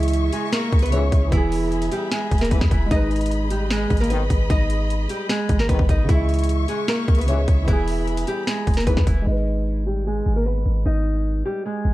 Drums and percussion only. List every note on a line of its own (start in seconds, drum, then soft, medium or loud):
0.03 closed hi-hat medium
0.08 closed hi-hat medium
0.13 closed hi-hat medium
0.33 closed hi-hat medium
0.53 snare loud
0.53 closed hi-hat medium
0.72 kick loud
0.72 closed hi-hat soft
0.79 closed hi-hat medium
0.86 closed hi-hat medium
0.92 closed hi-hat medium
1.12 kick loud
1.12 closed hi-hat medium
1.32 kick loud
1.32 closed hi-hat medium
1.52 open hi-hat medium
1.72 closed hi-hat medium
1.82 closed hi-hat medium
1.92 closed hi-hat medium
2.12 snare loud
2.12 closed hi-hat medium
2.31 kick loud
2.31 closed hi-hat medium
2.38 snare medium
2.38 closed hi-hat medium
2.45 closed hi-hat medium
2.51 kick loud
2.51 closed hi-hat medium
2.61 kick loud
2.61 snare loud
2.71 kick loud
2.71 closed hi-hat medium
2.91 kick loud
2.91 closed hi-hat medium
3.11 closed hi-hat soft
3.16 closed hi-hat medium
3.21 closed hi-hat medium
3.26 closed hi-hat medium
3.31 closed hi-hat medium
3.50 closed hi-hat medium
3.71 snare loud
3.71 closed hi-hat medium
3.90 kick loud
3.90 closed hi-hat soft
3.97 closed hi-hat medium
4.04 closed hi-hat medium
4.10 closed hi-hat medium
4.30 kick loud
4.30 closed hi-hat medium
4.50 kick loud
4.50 closed hi-hat medium
4.70 closed hi-hat medium
4.90 closed hi-hat medium
5.09 closed hi-hat medium
5.29 snare loud
5.29 closed hi-hat medium
5.49 kick loud
5.49 closed hi-hat medium
5.59 snare medium
5.69 kick loud
5.69 closed hi-hat medium
5.79 kick loud
5.89 kick loud
5.89 closed hi-hat medium
6.09 kick loud
6.09 closed hi-hat medium
6.29 closed hi-hat soft
6.34 closed hi-hat medium
6.39 closed hi-hat medium
6.44 closed hi-hat medium
6.49 closed hi-hat medium
6.68 closed hi-hat medium
6.88 snare loud
6.88 closed hi-hat medium
7.08 kick loud
7.08 closed hi-hat medium
7.15 closed hi-hat medium
7.21 closed hi-hat medium
7.28 closed hi-hat medium
7.48 kick loud
7.48 closed hi-hat medium
7.68 kick loud
7.68 closed hi-hat medium
7.88 open hi-hat medium
8.07 closed hi-hat medium
8.17 closed hi-hat medium
8.27 closed hi-hat medium
8.47 snare loud
8.47 closed hi-hat medium
8.67 kick loud
8.67 closed hi-hat medium
8.74 snare medium
8.74 closed hi-hat medium
8.80 closed hi-hat medium
8.87 kick loud
8.87 closed hi-hat medium
8.97 kick loud
8.97 snare medium
9.07 kick loud
9.07 closed hi-hat medium